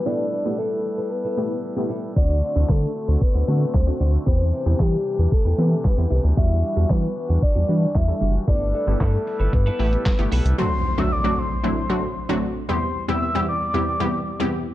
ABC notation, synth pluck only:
X:1
M:4/4
L:1/16
Q:1/4=114
K:Dmix
V:1 name="Synth pluck"
[A,B,EG] z2 [A,B,EG]3 z4 [A,B,EG] z2 [A,B,EG] z2 | [A,CDF] z2 [A,CDE]3 z4 [A,CDF] z2 [A,CDF] z2 | [B,CEG] z2 [B,CEG]3 z4 [B,CEG] z2 [B,CEG] z2 | [G,DEF] z2 [G,DEF]3 z4 [G,DEF] z2 [G,DEA] z2 |
[A,B,EG] z2 [A,B,EG]3 z4 [A,B,EG] z2 [A,B,EG] z2 | [F,A,CDF] z2 [F,A,CDF] z [F,A,CDF] z2 [F,A,CDE] z [F,A,CDF] z2 [F,A,CDF] z2 | [E,,G,B,CEG] z2 [E,,G,B,CEG] z [E,,G,B,CEG] z2 [E,,G,B,CEG] z [E,,G,B,CEG] z2 [E,,G,B,CEG] z2 |]